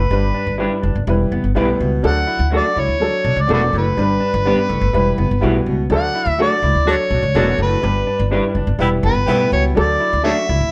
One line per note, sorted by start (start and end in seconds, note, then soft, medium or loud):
0.00 0.61 B4 medium
0.11 0.30 G1 medium
0.11 0.31 G2 medium
0.11 0.44 G3 medium
0.11 0.45 D4 medium
0.11 0.45 B4 medium
0.34 0.54 D4 medium
0.47 0.66 G1 medium
0.58 0.92 G3 medium
0.58 0.93 D4 medium
0.58 0.71 D4 medium
0.58 0.77 E4 medium
0.58 0.71 G4 medium
0.58 0.93 B4 medium
0.58 0.71 B4 medium
0.82 0.93 F#1 medium
0.82 1.02 D4 medium
0.95 1.05 G1 medium
1.07 1.26 E1 loud
1.07 1.41 G3 medium
1.07 1.41 E4 medium
1.07 1.42 B4 medium
1.32 1.41 F#1 medium
1.32 1.51 B3 medium
1.44 1.53 G1 medium
1.55 1.75 B1 medium
1.55 1.75 A2 medium
1.55 1.89 G3 medium
1.55 2.01 B3 medium
1.55 1.67 E4 medium
1.55 1.90 E4 medium
1.55 1.68 G4 medium
1.55 1.68 B4 medium
1.55 1.90 B4 loud
1.80 1.99 C#2 medium
1.80 1.99 B2 medium
2.03 2.23 D2 medium
2.03 2.37 F#3 medium
2.03 2.37 D4 medium
2.03 2.38 A4 loud
2.07 2.51 F#5 loud
2.27 2.47 E4 medium
2.39 2.59 D2 medium
2.51 2.86 F#3 medium
2.51 2.64 A3 medium
2.51 2.86 D4 medium
2.51 2.64 D4 medium
2.51 2.71 F#4 medium
2.51 2.64 F#4 medium
2.51 2.87 A4 medium
2.56 2.81 D5 loud
2.76 2.86 C#2 medium
2.76 2.96 E4 medium
2.76 3.43 C#5 medium
2.88 3.07 D2 medium
3.00 3.34 F#3 medium
3.00 3.35 D4 medium
3.00 3.35 A4 medium
3.24 3.34 B1 medium
3.24 3.44 D4 medium
3.36 3.46 C#2 medium
3.42 3.51 D5 medium
3.48 3.68 E1 medium
3.48 3.69 F#2 medium
3.48 3.82 F#3 medium
3.48 3.61 A3 medium
3.48 3.67 B3 medium
3.48 3.83 D4 medium
3.48 3.61 D4 medium
3.48 3.61 F#4 loud
3.48 3.83 A4 medium
3.53 3.62 F#4 medium
3.53 3.61 B4 medium
3.53 3.74 D5 medium
3.72 3.92 F#1 medium
3.72 3.93 A2 medium
3.72 3.91 A3 medium
3.78 5.65 B4 medium
3.97 4.17 G1 medium
3.97 4.17 G2 medium
3.97 4.31 G3 medium
3.97 4.31 D4 medium
3.97 4.32 B4 loud
4.20 4.40 D4 medium
4.34 4.53 G1 loud
4.45 4.79 G3 medium
4.45 4.65 B3 medium
4.45 4.57 D4 medium
4.45 4.79 D4 medium
4.45 4.58 G4 medium
4.45 4.58 B4 medium
4.45 4.80 B4 medium
4.69 4.79 F#1 medium
4.69 4.88 A3 medium
4.81 4.91 G1 medium
4.93 5.13 E1 medium
4.93 5.27 G3 medium
4.93 5.28 E4 medium
4.93 5.28 B4 loud
5.18 5.28 F#1 medium
5.18 5.37 B3 medium
5.31 5.40 G1 medium
5.41 5.62 B1 medium
5.41 5.61 A2 medium
5.41 5.75 G3 medium
5.41 5.87 B3 medium
5.41 5.75 E4 medium
5.41 5.54 E4 medium
5.41 5.76 F#4 medium
5.41 5.54 G4 medium
5.41 5.54 B4 medium
5.66 5.85 C#2 medium
5.66 5.86 B2 medium
5.90 6.09 D2 medium
5.90 6.10 D2 medium
5.90 6.24 F#3 medium
5.90 6.24 D4 medium
5.90 6.25 A4 loud
5.94 6.37 F#5 loud
6.15 6.34 E4 medium
6.26 6.45 D2 medium
6.38 6.72 F#3 medium
6.38 6.50 A3 medium
6.38 6.72 D4 medium
6.38 6.51 D4 medium
6.38 6.58 F#4 medium
6.38 6.51 F#4 medium
6.38 6.73 A4 medium
6.38 6.92 D5 loud
6.63 6.72 C#2 medium
6.63 6.82 E4 medium
6.75 6.94 D2 medium
6.85 7.20 F#3 medium
6.85 6.95 A3 medium
6.85 6.94 D4 medium
6.85 7.20 D4 medium
6.85 6.94 F#4 loud
6.85 7.21 A4 medium
6.91 7.61 C#5 medium
7.10 7.20 B1 medium
7.10 7.22 A3 medium
7.10 7.30 D4 medium
7.10 7.22 D4 medium
7.10 7.22 F#4 medium
7.23 7.32 C#2 medium
7.34 7.54 E1 medium
7.34 7.55 F#2 medium
7.34 7.68 F#3 medium
7.34 7.80 A3 medium
7.34 7.46 A3 medium
7.34 7.54 B3 medium
7.34 7.80 D4 medium
7.34 7.69 D4 medium
7.34 7.47 D4 medium
7.34 7.81 F#4 medium
7.34 7.47 F#4 loud
7.34 7.69 A4 medium
7.58 7.78 F#1 medium
7.58 7.78 A2 medium
7.58 7.78 A3 medium
7.62 8.29 B4 medium
7.82 8.03 G1 medium
7.82 8.02 G2 medium
7.82 8.16 G3 medium
7.82 8.17 D4 medium
7.82 8.17 B4 medium
8.07 8.26 D4 medium
8.19 8.39 G1 medium
8.31 8.64 G3 medium
8.31 8.65 D4 medium
8.31 8.43 D4 medium
8.31 8.50 E4 medium
8.31 8.43 G4 medium
8.31 8.65 B4 medium
8.31 8.43 B4 loud
8.55 8.65 F#1 medium
8.55 8.75 D4 medium
8.67 8.77 G1 medium
8.79 8.98 E1 medium
8.79 9.13 G3 medium
8.79 8.87 B3 medium
8.79 9.13 E4 medium
8.79 8.88 E4 loud
8.79 8.87 G4 loud
8.79 9.13 B4 medium
9.03 9.13 F#1 medium
9.03 9.15 B3 medium
9.03 9.24 B3 medium
9.03 9.15 E4 medium
9.03 9.15 G4 medium
9.03 9.49 B4 medium
9.15 9.25 G1 medium
9.26 9.47 B1 medium
9.26 9.47 A2 medium
9.26 9.61 G3 medium
9.26 9.74 B3 medium
9.26 9.73 E4 medium
9.26 9.61 E4 medium
9.26 9.40 E4 medium
9.26 9.73 G4 loud
9.26 9.40 G4 medium
9.26 9.62 B4 medium
9.26 9.40 B4 medium
9.51 9.71 C#2 medium
9.51 9.71 B2 medium
9.51 9.64 C#5 medium
9.75 9.96 D2 medium
9.75 9.96 D2 loud
9.75 10.09 F#3 medium
9.75 10.09 D4 medium
9.75 10.10 A4 loud
9.75 10.22 D5 medium
10.00 10.19 E4 medium
10.13 10.32 D2 medium
10.23 10.57 F#3 medium
10.23 10.36 A3 medium
10.23 10.57 D4 medium
10.23 10.36 D4 medium
10.23 10.44 F#4 medium
10.23 10.36 F#4 medium
10.23 10.32 A4 medium
10.23 10.58 A4 medium
10.23 10.31 C#5 medium
10.23 10.72 E5 loud
10.49 10.58 C#2 medium
10.49 10.68 E4 medium
10.61 10.72 D2 medium